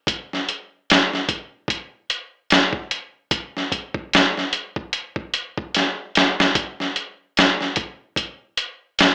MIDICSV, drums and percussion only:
0, 0, Header, 1, 2, 480
1, 0, Start_track
1, 0, Tempo, 810811
1, 43, Time_signature, 4, 2, 24, 8
1, 5415, End_track
2, 0, Start_track
2, 0, Title_t, "Drums"
2, 42, Note_on_c, 9, 36, 106
2, 47, Note_on_c, 9, 42, 86
2, 101, Note_off_c, 9, 36, 0
2, 107, Note_off_c, 9, 42, 0
2, 197, Note_on_c, 9, 38, 36
2, 257, Note_off_c, 9, 38, 0
2, 288, Note_on_c, 9, 42, 60
2, 347, Note_off_c, 9, 42, 0
2, 533, Note_on_c, 9, 42, 89
2, 542, Note_on_c, 9, 38, 122
2, 592, Note_off_c, 9, 42, 0
2, 601, Note_off_c, 9, 38, 0
2, 672, Note_on_c, 9, 38, 41
2, 731, Note_off_c, 9, 38, 0
2, 761, Note_on_c, 9, 36, 90
2, 762, Note_on_c, 9, 42, 73
2, 821, Note_off_c, 9, 36, 0
2, 821, Note_off_c, 9, 42, 0
2, 995, Note_on_c, 9, 36, 90
2, 1007, Note_on_c, 9, 42, 80
2, 1054, Note_off_c, 9, 36, 0
2, 1067, Note_off_c, 9, 42, 0
2, 1243, Note_on_c, 9, 42, 78
2, 1302, Note_off_c, 9, 42, 0
2, 1483, Note_on_c, 9, 42, 98
2, 1493, Note_on_c, 9, 38, 123
2, 1542, Note_off_c, 9, 42, 0
2, 1553, Note_off_c, 9, 38, 0
2, 1614, Note_on_c, 9, 36, 94
2, 1673, Note_off_c, 9, 36, 0
2, 1723, Note_on_c, 9, 42, 76
2, 1782, Note_off_c, 9, 42, 0
2, 1960, Note_on_c, 9, 36, 106
2, 1961, Note_on_c, 9, 42, 86
2, 2019, Note_off_c, 9, 36, 0
2, 2020, Note_off_c, 9, 42, 0
2, 2112, Note_on_c, 9, 38, 35
2, 2171, Note_off_c, 9, 38, 0
2, 2201, Note_on_c, 9, 36, 80
2, 2203, Note_on_c, 9, 42, 66
2, 2260, Note_off_c, 9, 36, 0
2, 2262, Note_off_c, 9, 42, 0
2, 2335, Note_on_c, 9, 36, 92
2, 2394, Note_off_c, 9, 36, 0
2, 2448, Note_on_c, 9, 42, 84
2, 2456, Note_on_c, 9, 38, 121
2, 2507, Note_off_c, 9, 42, 0
2, 2515, Note_off_c, 9, 38, 0
2, 2590, Note_on_c, 9, 38, 40
2, 2649, Note_off_c, 9, 38, 0
2, 2680, Note_on_c, 9, 42, 75
2, 2739, Note_off_c, 9, 42, 0
2, 2819, Note_on_c, 9, 36, 89
2, 2878, Note_off_c, 9, 36, 0
2, 2918, Note_on_c, 9, 42, 78
2, 2977, Note_off_c, 9, 42, 0
2, 3055, Note_on_c, 9, 36, 85
2, 3114, Note_off_c, 9, 36, 0
2, 3159, Note_on_c, 9, 42, 76
2, 3218, Note_off_c, 9, 42, 0
2, 3301, Note_on_c, 9, 36, 89
2, 3360, Note_off_c, 9, 36, 0
2, 3401, Note_on_c, 9, 42, 86
2, 3413, Note_on_c, 9, 38, 59
2, 3460, Note_off_c, 9, 42, 0
2, 3472, Note_off_c, 9, 38, 0
2, 3643, Note_on_c, 9, 42, 77
2, 3654, Note_on_c, 9, 38, 100
2, 3702, Note_off_c, 9, 42, 0
2, 3713, Note_off_c, 9, 38, 0
2, 3789, Note_on_c, 9, 38, 90
2, 3848, Note_off_c, 9, 38, 0
2, 3879, Note_on_c, 9, 36, 109
2, 3879, Note_on_c, 9, 42, 86
2, 3938, Note_off_c, 9, 36, 0
2, 3938, Note_off_c, 9, 42, 0
2, 4027, Note_on_c, 9, 38, 37
2, 4086, Note_off_c, 9, 38, 0
2, 4120, Note_on_c, 9, 42, 60
2, 4179, Note_off_c, 9, 42, 0
2, 4365, Note_on_c, 9, 42, 86
2, 4373, Note_on_c, 9, 38, 127
2, 4424, Note_off_c, 9, 42, 0
2, 4432, Note_off_c, 9, 38, 0
2, 4503, Note_on_c, 9, 38, 38
2, 4562, Note_off_c, 9, 38, 0
2, 4593, Note_on_c, 9, 42, 73
2, 4599, Note_on_c, 9, 36, 90
2, 4652, Note_off_c, 9, 42, 0
2, 4658, Note_off_c, 9, 36, 0
2, 4833, Note_on_c, 9, 36, 86
2, 4838, Note_on_c, 9, 42, 79
2, 4892, Note_off_c, 9, 36, 0
2, 4897, Note_off_c, 9, 42, 0
2, 5076, Note_on_c, 9, 42, 80
2, 5135, Note_off_c, 9, 42, 0
2, 5321, Note_on_c, 9, 42, 92
2, 5331, Note_on_c, 9, 38, 118
2, 5380, Note_off_c, 9, 42, 0
2, 5390, Note_off_c, 9, 38, 0
2, 5415, End_track
0, 0, End_of_file